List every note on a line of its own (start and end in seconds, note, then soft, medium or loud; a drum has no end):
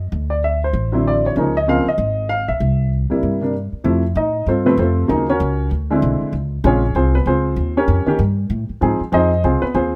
0.12 0.71 D2 medium
0.30 0.42 D5 medium
0.44 0.62 E5 medium
0.64 1.03 C5 medium
0.73 1.33 A1 medium
0.92 1.33 D3 medium
0.92 1.34 F#3 medium
0.92 1.34 C4 medium
0.92 1.34 E4 medium
1.08 1.25 D5 medium
1.26 1.65 C#5 medium
1.36 1.82 C#2 medium
1.36 1.53 C#3 medium
1.36 1.54 F3 medium
1.36 1.54 A#3 medium
1.36 1.54 D#4 medium
1.57 1.68 D#5 medium
1.68 1.85 C#3 medium
1.68 1.85 F3 medium
1.68 1.85 A#3 medium
1.68 1.85 C4 medium
1.68 1.87 F5 medium
1.86 2.27 D#5 medium
1.86 muted upright bass stroke soft
1.98 2.44 G#1 medium
2.29 2.48 F5 medium
2.48 2.60 A#1 medium
2.48 2.88 E5 medium
2.60 3.07 C2 medium
3.10 3.39 C3 medium
3.10 3.39 G3 medium
3.10 3.40 A#3 medium
3.10 3.40 E4 medium
3.10 muted upright bass stroke soft
3.23 3.69 G2 medium
3.41 3.52 C3 medium
3.41 3.52 G3 soft
3.41 3.53 A#3 medium
3.41 3.53 D4 medium
3.73 muted upright bass stroke soft
3.84 4.15 F2 medium
3.84 4.01 C3 medium
3.84 4.02 F3 medium
3.84 4.01 A3 medium
3.84 4.02 E4 medium
4.15 4.46 A2 medium
4.15 4.45 D#4 medium
4.15 4.45 D#5 medium
4.46 4.77 G2 medium
4.46 4.65 C4 medium
4.46 4.66 F4 medium
4.46 4.66 A4 medium
4.46 4.66 C5 medium
4.65 5.06 C3 medium
4.65 5.06 F3 medium
4.65 5.06 A3 medium
4.65 4.78 B3 medium
4.65 4.78 C4 medium
4.65 4.78 B4 medium
4.77 5.08 F2 medium
4.77 5.25 C4 medium
4.77 5.25 F4 medium
4.77 5.08 A4 medium
4.77 5.25 C5 medium
5.08 5.39 D#2 medium
5.08 5.25 C#3 medium
5.08 5.25 F#3 medium
5.08 5.26 A#3 medium
5.08 5.26 D#4 medium
5.30 5.69 C#4 medium
5.30 5.69 F#4 medium
5.30 5.69 A#4 medium
5.30 5.69 C#5 medium
5.40 5.70 C#2 medium
5.71 6.01 D2 medium
5.91 6.31 D3 medium
5.91 6.31 G#3 medium
5.91 6.31 C4 medium
5.91 6.32 E4 medium
6.02 6.20 B1 medium
6.21 muted upright bass stroke soft
6.33 6.63 C#2 medium
6.64 6.94 A#1 medium
6.64 6.81 C#3 medium
6.64 6.81 G#3 medium
6.64 6.81 C4 medium
6.64 6.94 C#4 medium
6.64 6.82 F4 medium
6.64 6.94 G#4 medium
6.64 6.94 C#5 medium
6.95 7.25 C2 medium
6.95 7.14 C4 medium
6.95 7.14 F4 medium
6.95 7.14 G#4 medium
6.95 7.14 C5 medium
7.15 7.26 B3 medium
7.15 7.26 B4 medium
7.26 7.56 C#2 medium
7.26 7.73 C4 medium
7.26 7.73 F4 medium
7.26 7.55 G#4 medium
7.26 7.73 C5 medium
7.56 7.87 D#2 medium
7.77 8.06 C#4 medium
7.77 8.07 G4 medium
7.77 8.17 A#4 medium
7.77 8.17 C#5 medium
7.88 8.06 F2 medium
8.06 8.18 D#3 medium
8.06 8.18 A#3 medium
8.06 8.18 C#4 medium
8.06 8.19 G4 medium
8.06 muted upright bass stroke soft
8.19 8.49 G2 medium
8.50 8.68 A2 medium
8.69 muted upright bass stroke soft
8.81 8.99 G#2 medium
8.81 8.98 F3 medium
8.81 8.98 C4 medium
8.81 8.99 D#4 medium
8.81 8.99 G#4 medium
9.00 muted upright bass stroke soft
9.12 9.42 F2 medium
9.12 9.29 F3 medium
9.12 9.30 C4 medium
9.12 9.30 D#4 medium
9.12 9.30 G#4 medium
9.12 9.42 C5 medium
9.12 9.42 D#5 medium
9.44 9.61 C2 medium
9.44 9.62 C4 medium
9.44 9.62 F4 medium
9.44 9.62 G#4 medium
9.44 9.62 C5 medium
9.62 9.74 B3 medium
9.62 9.74 B4 medium
9.62 muted upright bass stroke soft
9.75 9.96 D#2 medium
9.75 9.96 C4 medium
9.75 9.96 F4 medium
9.75 9.96 G#4 medium
9.75 9.96 C5 medium